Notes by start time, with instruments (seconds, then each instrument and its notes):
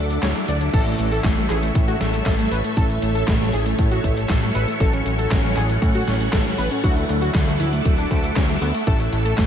Already playing: analog synth bass D2, grand piano F#3 A3 D4 E4, string machine A4 E5 F#5 D6
0.10 analog synth lead D4, closed hi-hat
0.23 analog synth bass D2, grand piano F#3 A3 D4 E4, analog synth lead C#5, snare, clap, closed hi-hat
0.35 analog synth lead D4, closed hi-hat
0.48 analog synth bass D2, analog synth lead D5, closed hi-hat
0.61 analog synth lead D4, closed hi-hat
0.74 analog synth bass A1, grand piano A2 E3 A3 C#4 E4, analog synth lead A4, string machine A4 C#5 E5 C#6, kick, closed hi-hat, crash
0.86 analog synth lead A3, closed hi-hat
0.99 analog synth bass A1, analog synth lead A3, closed hi-hat
1.12 analog synth lead A4, closed hi-hat
1.24 analog synth bass A1, analog synth lead A3, kick, snare, clap, closed hi-hat
1.37 analog synth bass A1, analog synth lead A3
1.50 analog synth bass A1, grand piano A2 E3 A3 C#4 E4, analog synth lead G#4, clap, closed hi-hat
1.62 analog synth lead A3, closed hi-hat
1.75 analog synth bass A2, analog synth lead A3, kick, closed hi-hat
1.88 analog synth lead F#4, closed hi-hat
2.01 analog synth bass A1, analog synth lead A3, snare, closed hi-hat
2.13 analog synth lead A3, closed hi-hat
2.26 analog synth bass A1, analog synth lead A4, kick, snare, clap, closed hi-hat
2.39 analog synth lead A3, closed hi-hat
2.52 analog synth bass A1, analog synth lead B4, closed hi-hat
2.64 analog synth lead A3, closed hi-hat
2.77 analog synth bass A1, grand piano A2 E3 A3 C#4 E4, analog synth lead A4, kick, closed hi-hat
2.90 analog synth lead A3, closed hi-hat
3.02 analog synth bass A1, analog synth lead A3, closed hi-hat
3.15 analog synth lead A4, closed hi-hat
3.28 analog synth bass A1, analog synth lead A3, kick, snare, clap, closed hi-hat
3.40 analog synth bass A1, analog synth lead A3
3.53 analog synth bass A1, grand piano A2 E3 A3 C#4 E4, analog synth lead G#4, closed hi-hat
3.66 analog synth lead A3, closed hi-hat
3.78 analog synth bass A2, analog synth lead A3, kick, closed hi-hat
3.91 analog synth lead F#4, closed hi-hat
4.04 analog synth bass A1, analog synth lead A3, kick, closed hi-hat
4.17 analog synth lead A3, closed hi-hat
4.29 analog synth bass A1, analog synth lead A4, kick, snare, clap, closed hi-hat
4.42 analog synth lead A3, closed hi-hat
4.55 analog synth bass A1, analog synth lead B4, closed hi-hat
4.68 analog synth lead A3, closed hi-hat
4.80 analog synth bass A1, grand piano A2 F#3 A3 C#4 F#4, analog synth lead A4, string machine A4 F#5, kick, closed hi-hat
4.93 analog synth lead C#4, closed hi-hat
5.06 analog synth bass A1, analog synth lead C#4, closed hi-hat
5.18 analog synth lead A4, closed hi-hat
5.31 analog synth bass A1, analog synth lead C#4, kick, snare, clap, closed hi-hat
5.44 analog synth bass A1, analog synth lead C#4
5.56 analog synth bass A1, grand piano A2 F#3 A3 C#4 F#4, analog synth lead G#4, clap, closed hi-hat
5.69 analog synth lead C#4, closed hi-hat
5.82 analog synth bass A2, analog synth lead C#4, kick, closed hi-hat
5.95 analog synth lead F#4, closed hi-hat
6.07 analog synth bass A1, analog synth lead C#4, snare, closed hi-hat
6.20 analog synth lead C#4, closed hi-hat
6.33 analog synth bass A1, analog synth lead A4, kick, snare, clap, closed hi-hat
6.46 analog synth lead C#4, closed hi-hat
6.58 analog synth bass A1, analog synth lead B4, closed hi-hat
6.71 analog synth lead C#4, closed hi-hat
6.84 analog synth bass D2, grand piano F#3 A3 D4 E4, analog synth lead F#4, string machine E5 D6, kick, closed hi-hat
6.96 analog synth lead A3, closed hi-hat
7.09 analog synth bass D2, analog synth lead A3, closed hi-hat
7.21 analog synth lead F#4, closed hi-hat
7.34 analog synth bass D2, analog synth lead A3, kick, snare, clap, closed hi-hat
7.47 analog synth bass D2, analog synth lead A3
7.60 analog synth bass D2, grand piano F#3 A3 D4 E4, analog synth lead E4, closed hi-hat
7.73 analog synth lead A3, closed hi-hat
7.85 analog synth bass D1, analog synth lead A3, kick, closed hi-hat
7.98 analog synth lead D4, closed hi-hat
8.11 analog synth bass D2, analog synth lead A3, kick, closed hi-hat
8.24 analog synth lead A3, closed hi-hat
8.36 analog synth bass D2, analog synth lead C#4, kick, snare, clap, closed hi-hat
8.49 analog synth lead A3, closed hi-hat
8.61 analog synth bass D2, analog synth lead B3, closed hi-hat
8.74 analog synth lead A3, closed hi-hat
8.87 analog synth bass A1, grand piano A2 E3 A3 C#4 E4, synth arpeggio sound A3, analog synth lead A4, string machine C#5 C#6, kick, closed hi-hat
9.00 analog synth lead A3, synth arpeggio sound C#4, closed hi-hat
9.12 analog synth bass A1, analog synth lead A3, synth arpeggio sound E4, closed hi-hat
9.25 analog synth lead A4, synth arpeggio sound A4, closed hi-hat
9.38 analog synth bass A1, analog synth lead A3, synth arpeggio sound A3, kick, snare, clap, closed hi-hat